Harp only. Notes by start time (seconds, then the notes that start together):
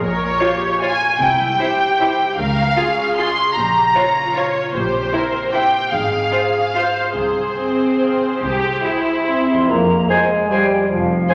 Already playing: F5
0.00 A#2
0.20 A#3
0.40 C#5
0.61 A#4
0.81 F5
1.02 A#4
1.21 C3
1.40 G3
1.60 C5
1.80 G4
2.01 E5
2.20 G4
2.39 C#3
2.58 C#4
2.77 G#4
2.98 C#5
3.18 F5
3.38 C#5
3.57 A#2
3.76 C#4
3.96 A#4
4.17 C#5
4.36 F5
4.56 C#5
4.74 A#2
4.93 C4
5.14 G4
5.34 C5
5.54 E5
5.74 C5
5.93 G#2
6.12 C4
6.32 G#4
6.54 C5
6.75 F5
6.97 C5
7.16 C3
7.36 C4
7.59 G#4
7.81 C5
8.03 F5
8.24 C5
8.44 C3
8.65 C4
8.87 G4
9.08 C5
9.30 E5
9.50 F2 C5
9.57 C4
9.62 F4
9.66 G#4